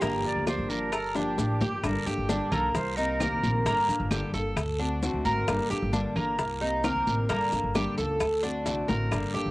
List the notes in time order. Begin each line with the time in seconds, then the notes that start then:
Already playing: G4
0.01 G1 D3 F3 A#3 D4 G4, high bongo, high conga, long guiro, maracas
0.24 D5, high bongo, high conga
0.35 D2
0.47 D4 C5, high bongo, high conga, short guiro, claves, maracas
0.58 G1
0.69 F3 A#3 D4 G4 A#4, high bongo, high conga, short guiro, maracas
0.92 A4 A#4, muted steel-string acoustic guitar stroke, high bongo, high conga, long guiro, claves, maracas
1.15 F3 A#3 D4 G4, high bongo, high conga, maracas
1.38 A1 F3 A#3 D4 G4, high bongo, high conga, short guiro, maracas
1.60 G1 G4, low bongo, high conga, short guiro, maracas
1.83 G1 D3 G3 A#3 D4 A4 A#4, high bongo, high conga, long guiro, claves, maracas
2.06 G1 A#3 D4 G4 A4, high bongo, high conga, maracas
2.17 G1
2.29 D3 G3 A#3 D4 A4, high bongo, high conga, short guiro, maracas
2.51 B1 A#3 D4 A4, high bongo, low conga, short guiro, claves, maracas
2.73 C2 C5, muted steel-string acoustic guitar stroke, high bongo, high conga, low conga, long guiro, maracas
2.96 A#3 C4 D#4 G4 A#4, high bongo, high conga, maracas
3.19 C3 D#3 A#3 C4 G4 A#4, high bongo, low bongo, high conga, short guiro, claves, maracas
3.32 C2
3.43 A#1, high conga, short guiro, maracas
3.65 G1 D3 G3 A#3 D4 A4, high bongo, high conga, long guiro, maracas
3.88 G1 A#3 D4 A4, high bongo, high conga, maracas
4.00 G1
4.10 D3 G3 A#3 D4 G4 A4, high bongo, high conga, short guiro, claves, maracas
4.33 G1 A#3 D4 A4, high bongo, high conga, short guiro, maracas
4.56 D2, muted steel-string acoustic guitar stroke, high bongo, high conga, long guiro, claves, maracas
4.79 A3 C4 D4 F#4, high bongo, high conga
5.02 D3 A3 C4 F#4, high bongo, low bongo, high conga, short guiro, maracas
5.13 D2
5.25 G#1 A#4, high conga, short guiro, maracas
5.47 G1 D3 G3 A#3 D4 A4, high bongo, high conga, long guiro, claves, maracas
5.70 G1 A#3 D4 G4 A4, high bongo, high conga, maracas
5.82 G1
5.92 D3 G3 A#3 D4 A4, high bongo, high conga, short guiro, maracas
6.15 G1 A#3 D4 A4, high bongo, low conga, short guiro, claves, maracas
6.38 C2, muted steel-string acoustic guitar stroke, high bongo, high conga, long guiro, maracas
6.61 A#3 C4 D#4 G4, high bongo, high conga
6.83 C3 D#3 A#3 C4 G4 A#4, high bongo, low bongo, high conga, short guiro, claves, maracas
6.96 C2
7.07 A1, high conga, short guiro, maracas
7.29 G1 D3 G3 A#3 D4 A4, high bongo, high conga, long guiro, maracas
7.52 G1 A#3 D4 A4, high bongo, high conga, maracas
7.63 G1
7.75 D3 G3 A#3 D4 G4 A4, high bongo, high conga, short guiro, claves, maracas
7.98 C#2 A#3 D4 A4, high bongo, high conga, short guiro, maracas
8.20 D2, muted steel-string acoustic guitar stroke, high bongo, high conga, long guiro, claves, maracas
8.43 A3 C4 D4 F#4, high bongo, high conga, maracas
8.66 C2 D3 A3 C4 F#4, high bongo, high conga, short guiro, maracas
8.88 A1 A#4, low bongo, high conga, short guiro, maracas
9.11 G1 D3 G3 A#3 D4 A4, high bongo, high conga, long guiro, claves, maracas
9.34 G1 A#3 D4 G4 A4, high bongo, high conga
9.45 G1